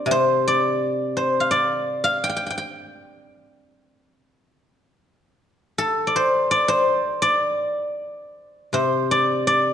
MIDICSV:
0, 0, Header, 1, 2, 480
1, 0, Start_track
1, 0, Tempo, 710059
1, 65, Time_signature, 2, 2, 24, 8
1, 4385, Tempo, 743494
1, 6482, End_track
2, 0, Start_track
2, 0, Title_t, "Guzheng"
2, 0, Program_c, 0, 107
2, 0, Note_on_c, 0, 57, 40
2, 0, Note_on_c, 0, 60, 39
2, 0, Note_on_c, 0, 62, 44
2, 0, Note_on_c, 0, 65, 46
2, 0, Note_on_c, 0, 67, 48
2, 0, Note_on_c, 0, 69, 52
2, 0, Note_on_c, 0, 72, 70
2, 0, Note_on_c, 0, 74, 78
2, 40, Note_on_c, 0, 48, 51
2, 72, Note_off_c, 0, 72, 0
2, 75, Note_on_c, 0, 72, 89
2, 319, Note_off_c, 0, 74, 0
2, 322, Note_on_c, 0, 74, 87
2, 539, Note_off_c, 0, 69, 0
2, 614, Note_off_c, 0, 67, 0
2, 709, Note_off_c, 0, 65, 0
2, 786, Note_off_c, 0, 72, 0
2, 789, Note_on_c, 0, 72, 69
2, 862, Note_off_c, 0, 62, 0
2, 948, Note_on_c, 0, 77, 62
2, 996, Note_off_c, 0, 60, 0
2, 1017, Note_off_c, 0, 74, 0
2, 1020, Note_on_c, 0, 74, 81
2, 1181, Note_off_c, 0, 57, 0
2, 1376, Note_off_c, 0, 77, 0
2, 1378, Note_on_c, 0, 77, 81
2, 1484, Note_off_c, 0, 48, 0
2, 1512, Note_on_c, 0, 79, 81
2, 1549, Note_off_c, 0, 79, 0
2, 1551, Note_on_c, 0, 79, 55
2, 1596, Note_off_c, 0, 79, 0
2, 1599, Note_on_c, 0, 79, 65
2, 1663, Note_off_c, 0, 79, 0
2, 1666, Note_on_c, 0, 79, 50
2, 1690, Note_off_c, 0, 79, 0
2, 1693, Note_on_c, 0, 79, 60
2, 1739, Note_off_c, 0, 79, 0
2, 1742, Note_on_c, 0, 79, 53
2, 2129, Note_off_c, 0, 72, 0
2, 2268, Note_off_c, 0, 74, 0
2, 2506, Note_off_c, 0, 77, 0
2, 2792, Note_off_c, 0, 79, 0
2, 3909, Note_on_c, 0, 69, 76
2, 4104, Note_on_c, 0, 74, 63
2, 4163, Note_on_c, 0, 72, 77
2, 4397, Note_off_c, 0, 74, 0
2, 4400, Note_on_c, 0, 74, 94
2, 4509, Note_off_c, 0, 72, 0
2, 4512, Note_on_c, 0, 72, 84
2, 4855, Note_off_c, 0, 74, 0
2, 4858, Note_on_c, 0, 74, 86
2, 5348, Note_off_c, 0, 69, 0
2, 5791, Note_off_c, 0, 72, 0
2, 5832, Note_on_c, 0, 48, 44
2, 5839, Note_on_c, 0, 72, 71
2, 6050, Note_off_c, 0, 74, 0
2, 6080, Note_on_c, 0, 74, 80
2, 6309, Note_off_c, 0, 74, 0
2, 6312, Note_on_c, 0, 74, 77
2, 6482, Note_off_c, 0, 48, 0
2, 6482, Note_off_c, 0, 72, 0
2, 6482, Note_off_c, 0, 74, 0
2, 6482, End_track
0, 0, End_of_file